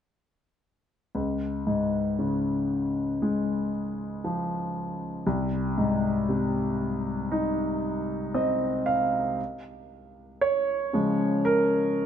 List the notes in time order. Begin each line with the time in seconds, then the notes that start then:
1.15 C#2
1.67 G#2
2.19 C#3
3.22 G#3
4.24 F3
5.27 C2
5.78 G#2
6.29 C3
7.32 D#4
8.34 C4 D#5
8.86 F5
10.41 C#5
10.93 C#3 F3 G#3
11.45 A#4